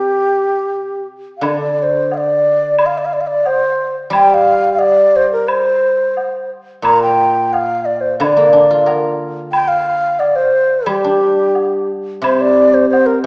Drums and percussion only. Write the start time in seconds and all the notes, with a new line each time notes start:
1.43 high woodblock
2.11 low woodblock
2.79 high woodblock
3.45 low woodblock
4.13 high woodblock
4.80 low woodblock
5.48 high woodblock
6.17 low woodblock
6.85 high woodblock
7.54 low woodblock
8.21 high woodblock
8.87 low woodblock
9.53 high woodblock
10.20 low woodblock
10.87 high woodblock
11.55 low woodblock
12.24 high woodblock
12.93 low woodblock